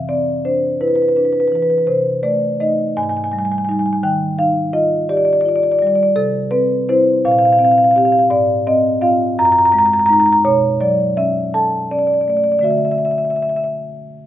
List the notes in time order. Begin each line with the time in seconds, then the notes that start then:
Already playing: C3
0.09 C4 D5
0.45 D4 C5
0.81 E4 B4
0.88 B4
0.96 B4
1.02 B4
1.08 B4
1.16 D4 B4
1.25 B4
1.33 B4
1.40 B4
1.48 B4
1.52 E3 B4
1.62 B4
1.70 B4
1.78 B4
1.87 C3 C5
2.23 A3 D5
2.60 A3 D#4 D#5
2.97 G#2 G#5
3.03 G#5
3.09 G#5
3.17 G#5
3.24 G#5
3.31 G3 G#5
3.39 G#5
3.45 G#5
3.52 G#5
3.58 G#5
3.65 G#5
3.69 G3 D#4 G#5
3.79 G#5
3.86 G#5
3.93 G#5
4.03 D#3 G5
4.39 D#4 F5
4.73 F4 D#5
5.09 G4 D5
5.17 D5
5.25 D5
5.33 D5
5.41 D5
5.45 F4 D5
5.56 D5
5.63 D5
5.72 D5
5.79 G3 D5
5.87 D5
5.95 D5
6.03 D5
6.16 C3 A4
6.51 C4 B4
6.89 C4 E4 C5
7.25 A#2 F5
7.31 F5
7.39 F5
7.45 F5
7.52 F5
7.59 C4 F5
7.64 F5
7.71 F5
7.78 F5
7.84 F5
7.91 F5
7.96 C4 G4 F5
8.05 F5
8.12 F5
8.19 F5
8.30 G#2 D5
8.67 C4 D#5
9.01 C4 F4 F5
9.39 F#2 A#5
9.45 A#5
9.52 A#5
9.58 A#5
9.65 A#5
9.72 G#3 A#5
9.79 A#5
9.86 A#5
9.93 A#5
9.99 A#5
10.06 G#3 D#4 A#5
10.13 A#5
10.20 A#5
10.26 A#5
10.33 A#5
10.45 B2 C#5
10.81 F#3 D5
11.17 C#4 E5
11.54 A4 A5
11.91 C#4 D5
11.99 D5
12.07 D5
12.14 D5
12.21 D5
12.28 A3 D5
12.37 D5
12.44 D5
12.52 D5
12.59 D3 A3 F#4 D5
12.64 E5
12.71 E5
12.77 E5
12.85 E5
12.91 E5
12.98 E5
13.05 E5
13.11 E5
13.18 E5
13.25 E5
13.30 E5
13.36 E5
13.42 E5
13.49 E5
13.56 E5
13.64 E5